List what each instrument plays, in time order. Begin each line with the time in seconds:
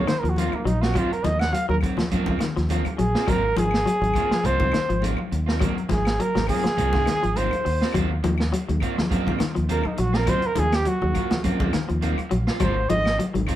0.07 clean electric guitar D#3, trumpet C5, muted clean electric guitar stroke, muted fingered electric bass stroke, snare, closed hi-hat, claves
0.19 clean electric guitar F3, trumpet A#4
0.24 fingered electric bass D#2, closed hi-hat
0.29 trumpet F#4
0.36 clean electric guitar F#3 A#3 C4 F4, trumpet F4, closed hi-hat, high conga
0.52 trumpet A#3, muted fingered electric bass stroke, muted clean electric guitar stroke, high conga, claves
0.65 fingered electric bass A#1, clean electric guitar F#3, trumpet D#4, muted clean electric guitar stroke, closed hi-hat
0.82 clean electric guitar A#3 C4 F4, trumpet F#4, snare
0.94 clean electric guitar F#3 C4 F4, trumpet F4, muted clean electric guitar stroke, kick, closed hi-hat, high conga, low conga, claves
1.12 trumpet A#4, muted clean electric guitar stroke, closed hi-hat
1.24 fingered electric bass D#2, clean electric guitar F3, trumpet D#5, muted clean electric guitar stroke, closed hi-hat, high conga
1.39 trumpet F#5, muted clean electric guitar stroke, snare, closed hi-hat, claves
1.53 clean electric guitar F#3, trumpet F5, muted clean electric guitar stroke, closed hi-hat
1.69 fingered electric bass D#2, clean electric guitar F#3, trumpet A#4, high conga
1.81 clean electric guitar F#3 C4, muted clean electric guitar stroke, kick, closed hi-hat, high conga, claves
1.97 clean electric guitar F3, muted clean electric guitar stroke, muted fingered electric bass stroke, snare, closed hi-hat, low conga
2.11 fingered electric bass F#2, clean electric guitar F#3 A#3 C4 F4, kick, closed hi-hat, high conga
2.26 clean electric guitar A#3 C4 F4, kick, high conga, low conga
2.39 clean electric guitar D#3, muted clean electric guitar stroke, muted fingered electric bass stroke, snare, closed hi-hat, claves
2.56 fingered electric bass D#2, clean electric guitar F3, snare, closed hi-hat
2.69 clean electric guitar F#3 A#3 C4 F4, closed hi-hat, high conga
2.85 muted clean electric guitar stroke, muted fingered electric bass stroke, closed hi-hat, high conga, claves
2.98 fingered electric bass A#1, clean electric guitar F#3, trumpet G#4, muted clean electric guitar stroke, closed hi-hat
3.15 clean electric guitar A#3 C4 F4, snare
3.27 fingered electric bass G#1, clean electric guitar F#3 A#3 C4 F4, trumpet A#4, kick, closed hi-hat, high conga, low conga, claves
3.44 muted clean electric guitar stroke
3.56 fingered electric bass G#1, clean electric guitar F3, trumpet G#4, muted clean electric guitar stroke, closed hi-hat, high conga
3.71 muted clean electric guitar stroke, snare, claves
3.86 clean electric guitar F#3, muted clean electric guitar stroke, closed hi-hat
4.01 fingered electric bass G#1, clean electric guitar F#3, closed hi-hat, high conga
4.14 clean electric guitar F#3 A#3 C4 F4, kick, closed hi-hat, high conga, claves
4.31 clean electric guitar F3, muted clean electric guitar stroke, muted fingered electric bass stroke, snare
4.43 fingered electric bass C2, clean electric guitar F#3 A#3 C4 F4, trumpet C5, kick, closed hi-hat
4.60 clean electric guitar C4 F4, kick, high conga, low conga
4.72 clean electric guitar D#3, muted clean electric guitar stroke, snare, closed hi-hat, claves
4.89 fingered electric bass G#1, clean electric guitar F3, closed hi-hat
5.02 clean electric guitar F#3 A#3 C4 F4, closed hi-hat, high conga
5.17 muted clean electric guitar stroke, high conga, claves
5.32 fingered electric bass D#2, muted clean electric guitar stroke, closed hi-hat
5.46 clean electric guitar A#3 C4 F4, snare
5.59 clean electric guitar F#3 A#3 C4, muted clean electric guitar stroke, kick, closed hi-hat, high conga, low conga, claves
5.77 muted clean electric guitar stroke, closed hi-hat
5.89 fingered electric bass G#1, clean electric guitar F3, trumpet G#4, muted clean electric guitar stroke, kick, snare, closed hi-hat, high conga
6.05 muted clean electric guitar stroke, snare, closed hi-hat, claves
6.19 clean electric guitar F#3, trumpet A#4, muted clean electric guitar stroke, closed hi-hat, high conga
6.35 fingered electric bass G#1, clean electric guitar F#3, snare, high conga
6.47 clean electric guitar F#3 A#3 C4 F4, trumpet G#4, kick, open hi-hat, high conga, claves
6.64 clean electric guitar F3, muted clean electric guitar stroke, muted fingered electric bass stroke, snare, closed hi-hat
6.77 fingered electric bass C2, clean electric guitar F#3 A#3 C4 F4, kick, closed hi-hat, high conga
6.93 clean electric guitar A#3 C4 F4, kick, snare, high conga, low conga
7.06 clean electric guitar D#3, muted clean electric guitar stroke, snare, closed hi-hat, claves
7.23 fingered electric bass G#1, clean electric guitar F3, closed hi-hat
7.36 clean electric guitar F#3 A#3 C4 F4, trumpet C5, closed hi-hat, high conga
7.51 muted clean electric guitar stroke, closed hi-hat, high conga, claves
7.65 fingered electric bass D#2, muted clean electric guitar stroke, open hi-hat
7.81 clean electric guitar A#3 C4 F4, snare
7.92 fingered electric bass D#2, clean electric guitar F#3 A#3 C4 F4, kick, closed hi-hat, high conga, low conga, claves
8.10 muted clean electric guitar stroke
8.23 fingered electric bass D#2, clean electric guitar F3, muted clean electric guitar stroke, closed hi-hat, high conga
8.38 muted clean electric guitar stroke, snare, claves
8.52 clean electric guitar F#3, muted clean electric guitar stroke, closed hi-hat, high conga
8.69 fingered electric bass D#2, clean electric guitar F#3, closed hi-hat, high conga
8.80 clean electric guitar F#3 A#3 C4 F4, kick, closed hi-hat, claves
8.97 clean electric guitar F3, muted clean electric guitar stroke, muted fingered electric bass stroke, snare, low conga
9.10 fingered electric bass F#2, clean electric guitar F#3 A#3 C4 F4, kick, closed hi-hat, high conga
9.26 clean electric guitar A#3 C4 F4, kick, high conga, low conga
9.39 clean electric guitar D#3, muted clean electric guitar stroke, muted fingered electric bass stroke, snare, closed hi-hat, claves
9.55 fingered electric bass D#2, clean electric guitar F3, closed hi-hat
9.69 clean electric guitar A#3 C4 F4, trumpet A#4, closed hi-hat, high conga
9.83 trumpet D#4, muted clean electric guitar stroke, muted fingered electric bass stroke, high conga, claves
9.97 fingered electric bass A#1, clean electric guitar F#3, trumpet F#4, muted clean electric guitar stroke, closed hi-hat
10.13 clean electric guitar A#3 C4 F4, trumpet A#4, snare
10.26 clean electric guitar F#3 A#3 C4 F4, trumpet C5, muted clean electric guitar stroke, kick, closed hi-hat, high conga, low conga, claves
10.42 muted clean electric guitar stroke, closed hi-hat
10.46 trumpet A#4
10.56 fingered electric bass D#2, clean electric guitar F3, trumpet G#4, muted clean electric guitar stroke, closed hi-hat, high conga
10.71 muted clean electric guitar stroke, snare, closed hi-hat, claves
10.76 trumpet G4
10.85 clean electric guitar F#3, trumpet F#4, muted clean electric guitar stroke, closed hi-hat, high conga
11.02 fingered electric bass D#2, clean electric guitar F#3, high conga
11.14 clean electric guitar F#3 A#3 F4, kick, closed hi-hat, claves
11.30 clean electric guitar F3, muted clean electric guitar stroke, muted fingered electric bass stroke, snare, closed hi-hat, low conga
11.44 fingered electric bass F#2, clean electric guitar A#3 C4 F4, muted clean electric guitar stroke, kick, closed hi-hat, high conga
11.60 clean electric guitar A#3 C4 F4, kick, high conga, low conga
11.73 clean electric guitar D#3, muted clean electric guitar stroke, muted fingered electric bass stroke, snare, closed hi-hat, claves
11.89 fingered electric bass D#2, clean electric guitar F3, closed hi-hat
12.01 clean electric guitar A#3 C4 F4, muted clean electric guitar stroke, closed hi-hat, high conga
12.18 muted clean electric guitar stroke, muted fingered electric bass stroke, closed hi-hat, claves
12.30 fingered electric bass A#1, clean electric guitar F#3, muted clean electric guitar stroke, closed hi-hat
12.47 clean electric guitar A#3 F4, snare
12.60 fingered electric bass G#1, clean electric guitar F#3 A#3 C4 F4, trumpet C5, kick, closed hi-hat, high conga, low conga, claves
12.76 muted clean electric guitar stroke
12.89 fingered electric bass G#1, clean electric guitar F3, trumpet D#5, muted clean electric guitar stroke, closed hi-hat, high conga
13.05 muted clean electric guitar stroke, snare, claves
13.18 clean electric guitar F#3, muted clean electric guitar stroke, closed hi-hat
13.34 fingered electric bass G#1, clean electric guitar F#3, closed hi-hat, high conga
13.47 clean electric guitar F#3 C4 F4, kick, closed hi-hat, high conga, claves